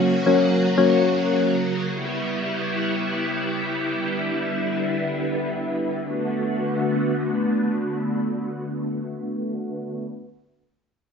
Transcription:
Already playing: string machine C#3 F#3 A#3 F#4, synth keys F#3 A#3 C#4
0.26 synth keys F#3 A#3 C#4
0.78 synth keys F#3 A#3 C#4
1.93 string machine G3 B3 E4
3.98 string machine D3 B3
6.03 string machine D3 A3 B3 F#4

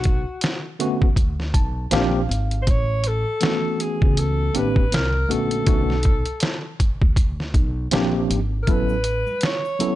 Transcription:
Already playing: upright bass B1, alto saxophone F#4
0.04 kick, closed hi-hat
0.41 snare, closed hi-hat
0.79 tine electric piano D3 A3 B3 C#4 F#4, closed hi-hat
1.02 upright bass D2, kick
1.16 kick, closed hi-hat
1.40 snare
1.54 upright bass B1, tine electric piano A5, kick, closed hi-hat
1.91 upright bass A#1, tine electric piano F3 A#3 C4 D4 G4 F5, snare, closed hi-hat
2.29 upright bass G#1, closed hi-hat
2.51 closed hi-hat
2.62 alto saxophone C5
2.67 upright bass A1, alto saxophone C#5, kick, closed hi-hat
3.04 alto saxophone A4, closed hi-hat
3.41 tine electric piano E3 A3 B3 C#4 F#4, snare, closed hi-hat
3.80 alto saxophone G#4, closed hi-hat
4.02 upright bass C#2, kick
4.17 alto saxophone A4, closed hi-hat
4.54 upright bass A1, tine electric piano D#3 A#3 C4 D4 G4, alto saxophone B4, closed hi-hat
4.76 kick
4.92 upright bass C2, alto saxophone A#4, snare, closed hi-hat
5.29 upright bass A#1, tine electric piano D3 A3 B3 C#4 F#4, alto saxophone A4, closed hi-hat
5.51 closed hi-hat
5.66 upright bass B1, tine electric piano D3 A3 B3 C#4 F#4, kick, closed hi-hat
5.90 snare
6.03 kick, closed hi-hat
6.26 closed hi-hat
6.40 snare, closed hi-hat
6.80 kick, closed hi-hat
7.01 upright bass D2, kick
7.16 kick, closed hi-hat
7.40 snare
7.54 upright bass B1, kick, closed hi-hat
7.91 upright bass A#1, tine electric piano F3 A#3 C4 D4 G4, snare, closed hi-hat
8.30 upright bass G#1, closed hi-hat
8.63 alto saxophone A#4
8.67 upright bass A1, tine electric piano F#3 B3 C#4 E4 A4, alto saxophone B4, kick, closed hi-hat, shaker
8.89 shaker
9.04 closed hi-hat, shaker
9.27 high conga, shaker
9.41 snare, closed hi-hat, shaker
9.45 alto saxophone C#5
9.65 shaker
9.79 tine electric piano F#3 B3 C#4 E4 A4, closed hi-hat, low conga, shaker

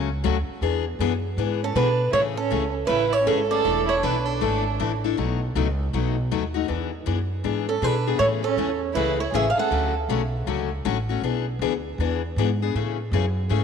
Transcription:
Already playing: upright bass C#2
0.24 upright bass D2, steel-string acoustic guitar C#3 F#3 A3 C#4 F#4
0.48 muted upright bass stroke
0.61 upright bass E2, steel-string acoustic guitar E3 B3 D4 G#4
0.99 upright bass F#2, steel-string acoustic guitar E3 B3 D4 G#4
1.37 upright bass G#2, steel-string acoustic guitar E3 B3 D4 G#4
1.62 violin C#4, steel-string acoustic guitar A4
1.75 upright bass B2, steel-string acoustic guitar E3 B3 D4 G#4 B4, violin D4
2.12 upright bass A2, steel-string acoustic guitar C#3 E3 A3 C#4 G#4 C#5, violin E4
2.36 violin C#4, steel-string acoustic guitar A4
2.50 upright bass C#2, steel-string acoustic guitar C#3 E3 A3 C#4 G#4
2.87 upright bass A1, steel-string acoustic guitar C#3 E3 A3 C#4 G#4 B4, violin E4
3.10 violin E4, steel-string acoustic guitar C#5
3.23 upright bass G#1, steel-string acoustic guitar C#3 E3 A3 C#4 A4, violin C#4
3.28 steel-string acoustic guitar G#4
3.48 steel-string acoustic guitar C#4 G#4 D5, violin A4
3.52 steel-string acoustic guitar A3
3.64 upright bass E1, steel-string acoustic guitar E3 A3 D4 E4 A4
3.87 violin E4, steel-string acoustic guitar C#5
4.01 upright bass B1, steel-string acoustic guitar E3 A3 D4 E4 A4 B4, violin D4
4.24 violin D4, steel-string acoustic guitar A4
4.41 upright bass G#1, steel-string acoustic guitar E3 A3 D4 E4 A4
4.79 upright bass A1, steel-string acoustic guitar E3 A3 D4 E4 A4
5.04 steel-string acoustic guitar D4 E4 A4
5.17 upright bass B1, steel-string acoustic guitar B2 F#3 A3 D#4 F#4
5.55 upright bass C#2, steel-string acoustic guitar B2 F#3 A3 D#4 F#4
5.93 upright bass B1, steel-string acoustic guitar B2 F#3 A3 D#4 F#4
6.31 upright bass D#2, steel-string acoustic guitar B2 F#3 A3 D#4 F#4
6.54 steel-string acoustic guitar A3 D#4 F#4
6.68 upright bass E2, steel-string acoustic guitar E3 B3 D4 G#4
7.06 upright bass F#2, steel-string acoustic guitar E3 B3 D4 G#4
7.44 upright bass G#2, steel-string acoustic guitar E3 B3 D4 G#4
7.68 violin C#4, steel-string acoustic guitar A4
7.81 upright bass B2, steel-string acoustic guitar E3 B3 D4 G#4 B4, violin D4
8.07 steel-string acoustic guitar B3 D4 G#4
8.18 upright bass A2, steel-string acoustic guitar C#3 E3 A3 C#4 G#4 C#5, violin E4
8.43 violin C#4, steel-string acoustic guitar A4
8.56 upright bass E2, steel-string acoustic guitar C#3 E3 A3 C#4 G#4
8.94 upright bass C#2, steel-string acoustic guitar C#3 E3 A3 C#4 G#4 B4, violin E4
9.19 violin E4, steel-string acoustic guitar C#5
9.32 upright bass A1, steel-string acoustic guitar C#3 E3 A3 C#4 G#4 E5, violin G#4
9.50 violin G#4, steel-string acoustic guitar F5
9.56 steel-string acoustic guitar A3 C#4 G#4 F#5, violin A4, muted upright bass stroke
9.71 upright bass D2, steel-string acoustic guitar D3 F#3 A3 C#4 F#4
10.09 upright bass B1, steel-string acoustic guitar D3 F#3 A3 C#4 F#4
10.46 upright bass C#2, steel-string acoustic guitar D3 F#3 A3 C#4 F#4
10.85 upright bass A1, steel-string acoustic guitar D3 F#3 A3 C#4 F#4
11.09 steel-string acoustic guitar A3 C#4 F#4
11.22 upright bass B1, steel-string acoustic guitar E3 B3 D4 G#4
11.59 upright bass D2, steel-string acoustic guitar E3 B3 D4 G#4
11.98 upright bass E2, steel-string acoustic guitar E3 B3 D4 G#4
12.36 upright bass G#2, steel-string acoustic guitar E3 B3 D4 G#4
12.62 steel-string acoustic guitar B3 D4 G#4
12.75 upright bass A2, steel-string acoustic guitar C#3 E3 A3 C#4 G#4
13.11 upright bass F#2, steel-string acoustic guitar C#3 E3 A3 C#4 G#4
13.49 upright bass G#2, steel-string acoustic guitar C#3 E3 A3 C#4 G#4

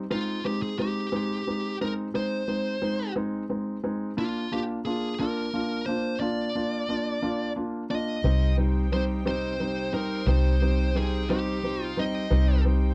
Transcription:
0.10 felt piano G#3 C4 D#4, lead electric guitar F4
0.44 felt piano G#3 C4 D#4, lead electric guitar G4
0.62 lead electric guitar G#4
0.79 felt piano G#3 C4 D#4, lead electric guitar G4
1.12 felt piano G#3 C4 D#4
1.47 felt piano G#3 C4 D#4
1.81 felt piano G#3 C4 D#4, lead electric guitar A#4
2.14 felt piano G#3 C4 D#4, lead electric guitar C5
2.48 felt piano G#3 C4 D#4
2.82 felt piano G#3 C4 D#4
3.16 felt piano G#3 C4 D#4
3.49 felt piano G#3 C4 D#4
3.84 felt piano G#3 C4 D#4
4.17 felt piano A#3 D4 F4, lead electric guitar F4
4.52 felt piano A#3 D4 F4, lead electric guitar G4
4.85 felt piano A#3 D4 F4, lead electric guitar G#4
5.20 felt piano A#3 D4 F4, lead electric guitar A#4
5.53 felt piano A#3 D4 F4
5.86 felt piano A#3 D4 F4, lead electric guitar C5
6.20 felt piano A#3 D4 F4, lead electric guitar D5
6.55 felt piano A#3 D4 F4
6.89 felt piano A#3 D4 F4
7.22 felt piano A#3 D4 F4
7.56 felt piano A#3 D4 F4
7.90 felt piano A#3 D4 F4, lead electric guitar D#5
8.23 fingered electric bass C2, steel-string acoustic guitar C3 G3 C4 D#4 G4, felt piano G3 C4 D#4, string section D#4 C5 G5
8.57 felt piano G3 C4 D#4
8.91 steel-string acoustic guitar G3 C4 D#4 G4, felt piano G3 C4 D#4, lead electric guitar C5
9.25 steel-string acoustic guitar C3 G3 C4 D#4 G4, felt piano G3 C4 D#4, lead electric guitar C5
9.60 felt piano G3 C4 D#4
9.93 felt piano G3 C4 D#4, steel-string acoustic guitar C4 D#4 G4, lead electric guitar A#4
10.27 fingered electric bass C2, steel-string acoustic guitar C3 G3 C4 D#4 G4, felt piano G3 C4 D#4, lead electric guitar C5
10.61 felt piano G3 C4 D#4
10.95 felt piano G3 C4 D#4, steel-string acoustic guitar C4 D#4, lead electric guitar G#4
11.28 steel-string acoustic guitar C3 G3 C4 D#4 G4, felt piano G3 C4 D#4, lead electric guitar G4
11.63 felt piano G3 C4 D#4
11.82 lead electric guitar F4
11.96 felt piano G3 C4 D#4, steel-string acoustic guitar C4 D#4 G4, lead electric guitar D#5
12.30 fingered electric bass C2, steel-string acoustic guitar C3 G3 C4 D#4 G4, felt piano G3 C4 D#4
12.65 felt piano G3 C4 D#4

